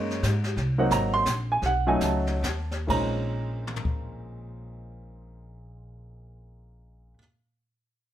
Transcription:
Already playing: upright bass F#2, grand piano G#3 A#3 C#4 D#4 C#5
0.10 snare
0.23 upright bass G#2, kick, snare, hi-hat pedal
0.44 snare
0.56 upright bass C2, brush sweep, kick, snare
0.78 grand piano F#3 A#3 C4 D#4 F#5
0.90 upright bass G#1, grand piano A#5, kick, snare, hi-hat pedal
1.14 grand piano C6
1.26 upright bass A#1, kick, snare, hi-hat pedal
1.52 grand piano G#5
1.62 upright bass B1, grand piano F#5, brush sweep, kick, snare
1.87 grand piano F#3 A3 C#4 D#4 G#5
2.01 upright bass C#2, grand piano A5, kick, snare, hi-hat pedal
2.27 snare
2.43 upright bass D#2, kick, snare, hi-hat pedal
2.71 snare
2.87 upright bass A#1, grand piano A#2 G#3 C4 C#4 D#4 A#5, kick, crash
3.67 mid tom
3.76 floor tom
3.85 kick

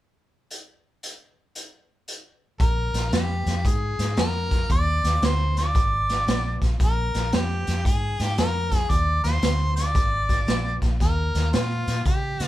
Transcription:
0.51 closed hi-hat
1.03 closed hi-hat
1.55 closed hi-hat
2.08 closed hi-hat
2.60 fingered electric bass A#1, harmonica A#4, kick, closed hi-hat
2.94 fingered electric bass A#1, snare, closed hi-hat
3.12 fingered electric bass F2, harmonica G4, snare, closed hi-hat
3.46 fingered electric bass F2, snare, closed hi-hat
3.65 fingered electric bass G#2, harmonica G#4, kick, closed hi-hat
3.99 fingered electric bass G#2, snare, closed hi-hat
4.17 fingered electric bass F2, harmonica A#4, snare, closed hi-hat
4.51 kick, snare, closed hi-hat
4.70 fingered electric bass D#2, harmonica D5, kick, closed hi-hat
5.04 fingered electric bass D#2, snare, closed hi-hat
5.22 fingered electric bass D2, harmonica C5, snare, closed hi-hat
5.57 harmonica D5, snare, closed hi-hat
5.75 fingered electric bass G#1, kick, snare, closed hi-hat
6.09 snare, closed hi-hat
6.28 fingered electric bass A#1, snare, closed hi-hat
6.62 fingered electric bass A#1, kick, snare, closed hi-hat
6.80 fingered electric bass A#1, harmonica A#4, kick, snare, closed hi-hat
7.14 fingered electric bass A#1, snare, closed hi-hat
7.33 fingered electric bass F2, harmonica G4, snare, closed hi-hat
7.67 fingered electric bass F2, snare, closed hi-hat
7.85 fingered electric bass G#2, harmonica G#4, kick, closed hi-hat
8.20 fingered electric bass G#2, harmonica G4, snare, closed hi-hat
8.38 fingered electric bass F2, harmonica A#4, snare, closed hi-hat
8.72 kick, snare, closed hi-hat
8.77 harmonica G#4
8.90 fingered electric bass D#2, harmonica D5, kick, closed hi-hat
9.23 fingered electric bass D#2, harmonica C5, snare, closed hi-hat
9.42 fingered electric bass D2, snare, closed hi-hat
9.76 harmonica D5, snare, closed hi-hat
9.95 fingered electric bass G#1, kick, snare, closed hi-hat
10.29 kick, snare, closed hi-hat
10.48 fingered electric bass A#1, snare, closed hi-hat
10.82 fingered electric bass A#1, kick, snare, closed hi-hat
11.00 fingered electric bass D#2, harmonica A#4, kick, snare, closed hi-hat
11.35 fingered electric bass D#2, snare, closed hi-hat
11.53 fingered electric bass A#2, harmonica F4, snare, closed hi-hat
11.88 fingered electric bass A#2, snare, closed hi-hat
12.05 fingered electric bass C#3, harmonica G4, kick, closed hi-hat
12.40 fingered electric bass C#3, snare, closed hi-hat

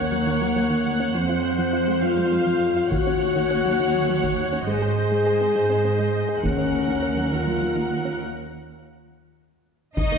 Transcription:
Already playing: cello section D#2, french horn section A#3, viola section C#5 F#5
0.12 synth arpeggio sound F#3
0.27 synth arpeggio sound D#3
0.41 synth arpeggio sound F#3
0.56 synth arpeggio sound F#3
0.70 synth arpeggio sound D#3
1.00 synth arpeggio sound C#4
1.15 cello section F2, synth arpeggio sound F3, french horn section C4, viola section C5
1.29 synth arpeggio sound F4
1.59 synth arpeggio sound F3
1.73 synth arpeggio sound F4
1.88 synth arpeggio sound G#3
2.02 synth arpeggio sound F3, french horn section F4, viola section F5
2.17 synth arpeggio sound G#3
2.32 synth arpeggio sound G#3
2.47 synth arpeggio sound F3
2.77 synth arpeggio sound F4
2.90 cello section D#2, synth arpeggio sound D#3, french horn section F#4, viola section C#5 F#5, taiko
3.07 synth arpeggio sound C#4
3.36 synth arpeggio sound D#3
3.51 synth arpeggio sound C#4
3.66 synth arpeggio sound F#3
3.80 synth arpeggio sound D#3
3.95 synth arpeggio sound F#3
4.09 synth arpeggio sound F#3
4.23 synth arpeggio sound D#3, taiko
4.52 synth arpeggio sound C#4
4.67 cello section G#2, synth arpeggio sound G#3, french horn section G#4, viola section C5 D#5
4.82 synth arpeggio sound G#4
5.12 synth arpeggio sound G#3
5.27 synth arpeggio sound G#4
5.41 synth arpeggio sound C4
5.56 synth arpeggio sound G#3
5.70 synth arpeggio sound C4
5.85 synth arpeggio sound C4
5.99 synth arpeggio sound G#3
6.29 synth arpeggio sound G#4
6.43 cello section D#2, synth arpeggio sound D#3, french horn section C#4, viola section A#4 F#5, taiko
6.58 synth arpeggio sound C#4
6.88 synth arpeggio sound D#3
7.03 synth arpeggio sound C#4
7.17 synth arpeggio sound F#3
7.32 synth arpeggio sound D#3, french horn section F4
7.46 synth arpeggio sound F#3
7.61 synth arpeggio sound F#3
7.76 synth arpeggio sound D#3
8.05 synth arpeggio sound C#4
9.97 synth arpeggio sound D#3, french horn section D#3, cello section D#4, viola section C#5 D#5, violin section D#5, taiko, impact
10.12 synth arpeggio sound A#3

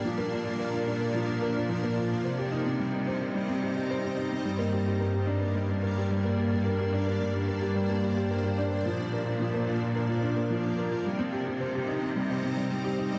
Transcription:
Already playing: ambient pad A#3 D4 A#4 D5
0.04 cello section A#2, upright piano F3, ambient pad F3
0.18 upright piano A#3
0.32 upright piano F4
0.45 upright piano F4
0.59 upright piano A#4
0.73 upright piano F4
0.87 upright piano D4
1.00 upright piano A#3
1.14 upright piano F3
1.28 upright piano D4
1.42 upright piano A#4
1.56 upright piano F4
1.69 upright piano F3
1.83 upright piano A#3
1.97 upright piano F4
2.11 upright piano F4
2.24 cello section C3, ambient pad G3 C4 D#4 C5 D#5, upright piano C5
2.38 upright piano G4
2.52 upright piano D#4
2.66 upright piano C4
2.80 upright piano G3
2.93 upright piano D#4
3.07 upright piano C5
3.21 upright piano G4
3.35 upright piano G3
3.48 upright piano C4
3.62 upright piano G4
3.76 upright piano G4
3.90 upright piano C5
4.04 upright piano G4
4.17 upright piano D#4
4.31 upright piano C4
4.44 cello section G2, upright piano G3, ambient pad A#3 D4 A#4 D5
4.59 upright piano A#3
4.73 upright piano G4
4.86 upright piano G4
5.00 upright piano A#4
5.14 upright piano G4
5.27 upright piano D4
5.41 upright piano A#3
5.55 upright piano G3
5.69 upright piano D4
5.83 upright piano A#4
5.97 upright piano G4
6.11 upright piano G3
6.24 upright piano A#3
6.38 upright piano G4
6.52 upright piano G4
6.64 upright piano A#4, ambient pad C5
6.79 upright piano G4
6.93 upright piano D4
7.07 upright piano A#3
7.21 upright piano G3
7.34 upright piano D4
7.48 upright piano A#4
7.62 upright piano G4
7.75 upright piano G3
7.89 upright piano A#3
8.03 upright piano G4
8.17 upright piano G4
8.30 upright piano A#4
8.44 upright piano G4
8.58 upright piano D4
8.72 upright piano A#3
8.85 cello section A#2, upright piano F3, ambient pad F3 A#3 A#4
8.99 upright piano D4
9.13 upright piano A#4
9.26 upright piano F4
9.40 upright piano F3
9.54 upright piano A#3
9.68 upright piano F4
9.82 upright piano F4
9.95 upright piano A#4
10.09 upright piano F4
10.23 upright piano D4
10.36 upright piano A#3
10.50 upright piano F3
10.64 upright piano D4
10.78 upright piano A#4
10.92 upright piano F4
11.05 cello section C3, upright piano G3, ambient pad G3 C4 D#4 C5 D#5
11.19 upright piano C4
11.33 upright piano G4
11.47 upright piano G4
11.60 upright piano C5
11.75 upright piano G4
11.88 upright piano D#4
12.02 upright piano C4
12.16 upright piano G3
12.30 upright piano D#4
12.43 upright piano C4
12.57 upright piano G3
12.71 upright piano G3
12.85 upright piano G4
12.99 upright piano D#4
13.13 upright piano G3

